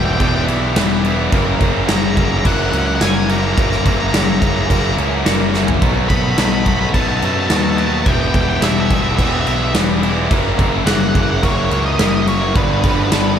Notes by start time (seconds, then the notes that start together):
Already playing: E1 E2 B2 E3 G3 B3 D4 E4 A4 D5 G5
0.05 G5
0.13 G5
0.19 E1 E2 B2 E3 G3 B3 D4 E4 B4 G5, kick, crash
0.28 G5
0.36 G5
0.47 B1 E2 B2 E3 G3 B3 E4, crash
0.75 E1 E2 B2 E3 G3 B3 E4 B4, snare, crash
1.03 E2 B2 E3 G3 B3 E4, crash
1.32 F#1 F#2 C#3 E3 F#3 A#3 E4 A#4 F#5, kick, crash
1.61 F#1 F#2 C#3 E3 F#3 A#3 E4, kick, crash
1.88 F#1 F#2 C#3 E3 F#3 A#3 C#4 E4 G#4 A#5, snare, crash
1.96 A#5
2.04 A#5
2.10 A#5
2.16 F#1 F#2 C#3 E3 F#3 A#3 E4 A#5, kick, crash
2.25 A#5
2.32 A#5
2.39 A#5
2.45 F#1 F#2 C#3 E3 F#3 A#3 E4 A#4 F#5, kick, crash
2.54 F#5
2.62 F#5
2.70 C#2 F#2 C#3 E3 F#3 A#3 C#4 E4 F#5, crash
2.78 F#5
2.86 F#5
2.95 F#5
3.00 F#1 F#2 C#3 E3 F#3 A#3 E4 F#4 A#4 G#5, snare, crash
3.28 F#2 C#3 E3 F#3 A#3 C#4 E4 A#5, crash
3.38 A#5
3.46 A#5
3.53 G#5 A#5
3.57 F#1 F#2 C#3 E3 F#3 A#3 E4 A#4, kick, crash
3.62 A#5
3.70 A#5, snare
3.77 A#5
3.85 F#1 F#2 C#3 E3 F#3 A#3 E4 A#5, kick, crash
3.94 A#5
4.00 A#5
4.08 A#5
4.13 F#1 F#2 C#3 E3 F#3 A#3 C#4 E4 G#4 A#5, snare, crash
4.24 A#5
4.32 A#5
4.40 F#1 F#2 C#3 E3 F#3 A#3 E4 A#5, kick, crash
4.46 A#5
4.56 A#5
4.62 A#5
4.69 F#1 F#2 C#3 E3 F#3 A#3 E4 A#4 A#5, kick, crash
4.79 A#5
4.86 A#5
4.97 C#2 F#2 C#3 E3 F#3 A#3 C#4 E4, crash
5.25 F#1 F#2 C#3 E3 F#3 A#3 E4 F#4 A#4, snare, crash
5.53 F#2 C#3 E3 F#3 A#3 C#4 E4, snare
5.68 floor tom
5.82 B1 B2 F#3 A3 B3 D#4 B4 A5, kick, crash
6.09 B1 B2 F#3 A3 B3 D#4 B5, kick, crash
6.16 B5
6.23 B5
6.31 B5
6.37 B1 B2 F#3 A3 B3 D#4 A4 B5, snare, crash
6.45 B5
6.53 B5
6.60 B5
6.66 B1 B2 F#3 A3 B3 D#4 B5, kick, crash
6.75 B5
6.81 B5
6.94 B1 B2 F#3 A3 B3 D#4 B4 A5, kick, crash
7.01 A5
7.08 A5
7.17 A5
7.22 F#2 B2 F#3 A3 B3 D#4 A5, crash
7.33 A5
7.40 A5
7.48 D#2 B2 F#3 A3 B3 D#4 F#4 B4 A5, snare, crash
7.55 A5
7.63 A5
7.71 A5
7.77 B2 F#3 A3 B3 D#4 E4 A5, crash
7.86 A5
7.94 A5
8.02 B4 D5 G5 A5, crash
8.06 E1 E2 B2 E3 G3 B3 E4, kick
8.13 G5
8.21 G5
8.28 G5
8.34 E1 E2 B2 E3 G3 B3 D4 E4 G5, kick, crash
8.41 G5
8.50 G5
8.56 G5
8.62 E1 E2 B2 E3 G3 B3 E4 A4 E5, snare, crash
8.70 E5
8.80 E5
8.85 E5
8.90 E1 E2 B2 E3 G3 B3 E4, kick, crash
8.94 E5
9.02 E5
9.09 E5
9.16 E1 E2 B2 E3 G3 B3 D4 B4 E5, kick, crash
9.20 E4
9.25 E5
9.32 E5
9.40 E5
9.46 B1 E2 B2 E3 G3 B3 E4 E5, crash
9.55 E5
9.65 E5
9.74 E1 E2 B2 E3 G3 B3 E4 B4, snare, crash
10.03 E2 B2 E3 G3 B3 E4, crash
10.28 F#1 F#2 C#3 E3 F#3 A#3 E4 A#4 F#5, kick, crash
10.58 F#1 F#2 C#3 E3 F#3 A#3 E4, kick, crash
10.86 F#1 F#2 C#3 E3 F#3 A#3 E4 G#4 F#5, snare, crash
10.94 F#5
11.01 F#5
11.09 F#5
11.15 F#1 F#2 C#3 E3 F#3 A#3 E4 F#5, kick, crash
11.23 F#5
11.31 F#5
11.37 F#5
11.43 F#1 F#2 C#3 E3 F#3 A#3 E4 A#4 C#5, kick, crash
11.51 C#5
11.57 C#5
11.64 C#5
11.71 C#2 F#2 C#3 E3 F#3 A#3 E4 C#5, crash
11.80 C#5
11.86 D#5
11.92 D#5
11.99 F#1 F#2 C#3 E3 F#3 A#3 E4 A#4 D#5, snare, crash
12.07 D#5
12.15 D#5
12.22 D#5
12.27 F#2 C#3 E3 F#3 A#3 E4 C#5, crash
12.55 G1 G2 D3 F3 G3 B3 D4 F4 B4 G5, kick, crash
12.63 B4
12.72 B4
12.81 G1 G2 D3 F3 G3 B3 D4 B4, kick, crash
12.88 B4
12.96 B4
13.03 B4
13.11 G1 G2 D3 F3 G3 B3 D4 A4 B4, snare, crash
13.19 B4
13.28 B4
13.35 B4